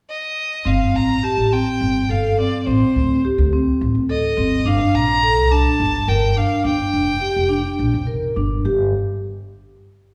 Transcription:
0.10 0.68 D#5 medium
0.65 0.78 G1 medium
0.65 1.15 C4 medium
0.65 0.97 F5 medium
0.94 1.20 A1 medium
0.94 1.26 A#5 medium
1.23 1.48 G4 medium
1.23 1.54 A5 medium
1.38 1.63 A1 medium
1.52 2.02 C4 medium
1.52 2.12 G5 medium
1.81 2.06 G1 medium
2.09 2.35 G1 medium
2.09 2.34 A4 medium
2.09 2.38 F5 medium
2.39 2.63 C4 medium
2.39 2.60 D5 medium
2.60 2.68 D5 soft
2.66 2.80 A1 medium
2.66 3.17 C4 medium
2.66 3.24 C5 medium
2.96 3.21 D2 medium
3.25 3.49 G4 medium
3.38 3.63 D2 medium
3.53 4.02 C4 medium
3.81 3.94 A1 medium
3.95 4.32 D2 medium
4.10 4.34 A4 medium
4.10 4.68 D#5 medium
4.37 4.62 G1 medium
4.37 4.62 C4 medium
4.66 4.78 G1 medium
4.66 5.15 D4 medium
4.66 4.96 F5 medium
4.94 5.37 A#1 medium
4.94 5.54 A#5 medium
5.23 5.47 A4 medium
5.37 5.62 C2 medium
5.51 6.00 D4 medium
5.51 6.11 A5 medium
5.80 6.05 G1 medium
6.08 6.33 G1 medium
6.08 6.32 A#4 medium
6.08 6.39 G5 medium
6.36 6.61 D4 medium
6.36 6.65 F5 medium
6.64 6.77 G1 medium
6.64 7.13 D4 medium
6.64 8.04 G5 medium
6.93 7.18 F1 medium
7.21 7.46 G4 medium
7.36 7.61 F1 medium
7.49 7.99 D4 medium
7.79 7.92 A#1 medium
7.94 8.32 F1 medium
8.07 8.32 A#4 medium
8.36 8.62 G1 medium
8.36 8.61 D4 medium
8.65 8.92 G1 medium
8.65 8.92 G4 medium

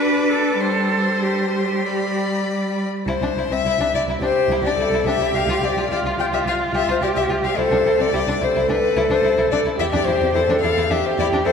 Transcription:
0.00 0.57 D4 medium
0.00 0.31 B4 medium
0.00 0.62 B4 medium
0.00 0.62 D6 soft
0.29 0.60 A4 medium
0.60 1.83 G3 soft
0.60 1.24 A4 medium
0.60 1.88 C5 soft
0.60 1.87 C6 soft
1.23 2.47 G4 medium
1.85 2.84 G3 soft
1.85 2.87 D5 soft
1.85 2.87 B5 soft
3.07 3.13 C2 medium
3.07 3.14 E4 medium
3.07 3.53 C5 medium
3.22 3.28 C2 soft
3.22 3.28 D4 soft
3.36 3.42 C2 soft
3.36 3.43 E4 soft
3.50 3.56 C2 soft
3.50 3.57 C4 soft
3.50 3.94 E5 medium
3.65 3.71 C2 medium
3.65 3.71 E4 medium
3.79 3.85 C2 soft
3.79 3.86 D4 soft
3.93 3.99 C2 soft
3.93 4.00 E4 soft
3.93 4.02 D5 medium
4.07 4.12 C2 medium
4.07 4.14 E4 soft
4.21 4.26 C2 soft
4.21 4.28 D4 soft
4.21 4.74 G4 medium
4.21 4.63 C5 medium
4.49 4.55 C2 medium
4.49 4.57 E4 medium
4.63 4.69 C2 soft
4.63 4.71 D4 soft
4.63 5.06 D5 medium
4.76 4.82 C2 soft
4.76 4.85 E4 soft
4.76 5.08 A4 medium
4.91 4.97 C2 medium
4.91 4.99 E4 medium
5.05 5.11 C2 soft
5.05 5.13 D4 soft
5.05 5.90 G4 medium
5.05 5.36 E5 medium
5.20 5.25 C2 soft
5.20 5.27 E4 soft
5.33 5.39 C2 medium
5.33 5.41 G4 medium
5.33 5.66 F5 medium
5.48 5.54 C2 soft
5.48 5.55 F4 soft
5.62 5.68 C2 soft
5.62 5.69 G4 soft
5.62 5.91 D5 medium
5.76 5.81 C2 soft
5.76 5.83 F4 soft
5.90 5.96 C2 medium
5.90 7.04 F4 medium
5.90 5.97 G4 medium
5.90 5.99 D5 medium
6.04 6.10 C2 soft
6.04 6.11 F4 soft
6.18 6.24 C2 soft
6.18 6.24 G4 soft
6.18 6.25 G5 medium
6.32 6.38 C2 medium
6.32 6.39 G4 medium
6.32 6.39 E5 medium
6.46 6.52 C2 soft
6.46 6.53 F4 soft
6.46 6.56 F5 medium
6.74 6.79 C2 medium
6.74 6.80 G4 medium
6.74 6.89 E5 medium
6.88 6.94 C2 soft
6.88 6.94 F4 soft
6.88 6.96 C5 medium
7.02 7.08 C2 soft
7.02 7.08 G4 soft
7.02 7.57 G4 medium
7.02 7.08 D5 medium
7.15 7.21 C2 medium
7.15 7.21 G4 medium
7.15 7.24 E5 medium
7.29 7.35 C2 soft
7.29 7.35 F4 soft
7.44 7.49 C2 soft
7.44 7.49 G4 soft
7.44 7.59 F5 medium
7.57 7.63 C2 medium
7.57 7.63 E4 medium
7.57 8.12 A4 medium
7.57 8.02 C5 medium
7.71 7.77 C2 soft
7.71 7.77 D4 soft
7.85 7.91 C2 soft
7.85 7.92 E4 soft
7.99 8.06 C2 soft
7.99 8.05 C4 soft
7.99 8.45 D5 medium
8.13 8.19 C2 medium
8.13 8.19 E4 medium
8.13 8.21 G4 soft
8.28 8.34 C2 soft
8.28 8.33 D4 soft
8.41 8.47 C2 soft
8.41 8.47 E4 soft
8.41 9.77 A4 medium
8.41 8.70 C5 medium
8.56 8.61 C2 medium
8.56 8.61 E4 medium
8.69 8.75 C2 soft
8.69 8.75 D4 soft
8.69 9.10 B4 medium
8.97 9.02 C2 medium
8.97 9.02 E4 medium
9.10 9.16 C2 soft
9.10 9.16 D4 soft
9.10 9.51 C5 medium
9.24 9.30 C2 soft
9.24 9.30 E4 soft
9.37 9.43 C2 medium
9.37 9.43 E4 medium
9.51 9.58 C2 soft
9.51 9.58 D4 soft
9.51 9.59 D5 medium
9.65 9.71 C2 soft
9.65 9.71 E4 soft
9.79 9.85 E2 medium
9.79 9.85 E4 medium
9.79 10.36 G4 medium
9.79 9.85 E5 medium
9.93 9.99 E2 soft
9.93 9.99 D4 soft
9.93 10.07 D5 medium
10.06 10.13 E2 soft
10.06 10.13 E4 soft
10.06 10.33 C5 medium
10.21 10.27 E2 soft
10.21 10.27 C4 soft
10.33 10.40 E2 medium
10.33 10.40 E4 medium
10.33 10.93 A4 medium
10.33 10.60 C5 medium
10.48 10.54 E2 soft
10.48 10.55 D4 soft
10.61 10.69 E2 soft
10.61 10.69 E4 soft
10.61 10.92 F5 medium
10.77 10.83 E2 medium
10.77 10.83 E4 soft
10.90 10.96 E2 soft
10.90 10.96 D4 soft
10.90 11.48 G4 medium
10.90 11.07 E5 medium
11.06 11.18 C5 medium
11.18 11.24 E2 medium
11.18 11.25 E4 medium
11.18 11.26 D5 medium
11.32 11.38 E2 soft
11.32 11.39 D4 soft
11.45 11.51 E2 soft
11.45 11.51 E4 soft
11.45 11.52 A4 medium
11.45 11.52 C5 medium

